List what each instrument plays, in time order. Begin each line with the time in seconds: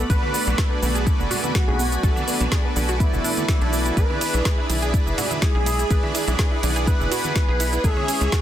Already playing: analog synth pad A3 D5 B5
0.10 analog synth bass B1, supersaw synth D4 F#4 A4 B4 D5, synth pluck B4, analog synth lead B4, analog synth pad G#5, kick, closed hi-hat, shaker
0.23 synth pluck B3, high conga, high woodblock
0.34 synth pluck B3, open hi-hat, shaker
0.47 analog synth bass B1, synth pluck B3, closed hi-hat, high woodblock, shaker
0.58 synth pluck A4, kick, snare, closed hi-hat, shaker
0.71 synth pluck B3
0.82 analog synth bass B1, synth pluck B3, supersaw synth D4 F#4 A4 B4 D5, open hi-hat, high conga, shaker
0.95 synth pluck G#4, closed hi-hat, shaker
1.07 synth pluck B3, kick, closed hi-hat, shaker
1.19 analog synth bass F#1, synth pluck B3, shaker
1.30 synth pluck F#4, open hi-hat, low conga, high woodblock, shaker
1.44 synth pluck B3, closed hi-hat, high conga, shaker
1.55 synth pluck B3, analog synth lead F#4, kick, snare, closed hi-hat, shaker
1.68 analog synth bass B1, synth pluck G#4, low conga
1.79 synth pluck B3, open hi-hat, shaker
1.92 synth pluck B3, closed hi-hat, shaker
2.03 analog synth bass B1, supersaw synth D4 F#4 A4 B4 D5, synth pluck A4, kick, closed hi-hat, shaker
2.16 synth pluck B3, high conga, high woodblock, shaker
2.28 synth pluck B3, open hi-hat, shaker
2.40 analog synth bass B1, synth pluck B3, closed hi-hat, low conga, high woodblock, shaker
2.52 synth pluck G#4, kick, snare, closed hi-hat, shaker
2.65 synth pluck B3
2.76 analog synth bass B1, synth pluck B3, supersaw synth D4 F#4 A4 B4 D5, open hi-hat, high conga, shaker
2.89 synth pluck F#4, closed hi-hat, shaker
3.00 synth pluck B3, analog synth lead E4, kick, closed hi-hat, shaker
3.13 analog synth bass F#1, synth pluck B3, low conga, shaker
3.24 synth pluck D4, open hi-hat, shaker
3.37 synth pluck B3, supersaw synth D4 F#4 A4 B4 D5, closed hi-hat, high conga, shaker
3.48 synth pluck B3, supersaw synth D4 F#4 A4 B4 D5, kick, snare, closed hi-hat, shaker
3.61 analog synth bass B1, synth pluck D4, supersaw synth D4 F#4 A4 B4 D5, closed hi-hat
3.73 synth pluck B3, open hi-hat, shaker
3.86 synth pluck B3, closed hi-hat, shaker
3.97 analog synth bass B1, supersaw synth D4 E4 G#4 B4 D5, analog synth pad G#4 E5 B5, analog synth lead B4, synth pluck B4, kick, closed hi-hat, shaker
4.10 synth pluck E4, high conga, high woodblock
4.21 synth pluck E4, open hi-hat, ride, shaker
4.33 analog synth bass B1, synth pluck E4, closed hi-hat, high woodblock, shaker
4.45 synth pluck G#4, kick, snare, closed hi-hat, shaker
4.58 synth pluck E4
4.69 analog synth bass B1, supersaw synth D4 E4 G#4 B4 D5, synth pluck E4, open hi-hat, ride, high conga, shaker
4.82 synth pluck G#4, closed hi-hat, shaker
4.94 synth pluck E4, kick, closed hi-hat, shaker
5.07 analog synth bass F#1, synth pluck E4, shaker
5.18 synth pluck F#4, open hi-hat, ride, low conga, high woodblock, shaker
5.31 synth pluck E4, closed hi-hat, high conga, shaker
5.42 synth pluck E4, analog synth lead G#4, kick, snare, closed hi-hat, shaker
5.55 analog synth bass B1, synth pluck G#4, low conga
5.66 synth pluck E4, open hi-hat, ride, shaker
5.79 synth pluck E4, closed hi-hat, shaker
5.91 analog synth bass B1, supersaw synth D4 E4 G#4 B4 D5, synth pluck B4, analog synth pad F#5, kick, closed hi-hat, shaker
6.03 synth pluck E4, high conga, high woodblock
6.15 synth pluck E4, open hi-hat, ride, shaker
6.28 analog synth bass B1, synth pluck E4, closed hi-hat, low conga, high woodblock, shaker
6.39 synth pluck G#4, kick, snare, closed hi-hat, shaker
6.52 synth pluck E4
6.63 analog synth bass B1, supersaw synth D4 E4 G#4 B4 D5, synth pluck E4, open hi-hat, ride, high conga, shaker
6.76 synth pluck G#4, closed hi-hat, shaker
6.87 synth pluck E4, analog synth lead B4, kick, closed hi-hat, shaker
7.00 analog synth bass F#1, synth pluck E4, low conga, shaker
7.12 synth pluck F#4, open hi-hat, ride, shaker
7.24 synth pluck E4, closed hi-hat, high conga, shaker
7.36 synth pluck E4, kick, snare, closed hi-hat, shaker
7.49 analog synth bass B1, synth pluck G#4
7.60 synth pluck E4, open hi-hat, ride, shaker
7.73 synth pluck E4, closed hi-hat, shaker
7.84 analog synth bass C#2, supersaw synth C#4 E4 G#4 C#5 E5, synth pluck G#4, analog synth lead G#4, analog synth pad C#5 E5 C#6, kick, closed hi-hat, shaker
7.97 synth pluck C#4, high conga, high woodblock
8.08 synth pluck C#4, open hi-hat, ride, shaker
8.21 analog synth bass C#2, synth pluck C#4, closed hi-hat, high woodblock, shaker
8.32 synth pluck F#4, kick, snare, closed hi-hat, shaker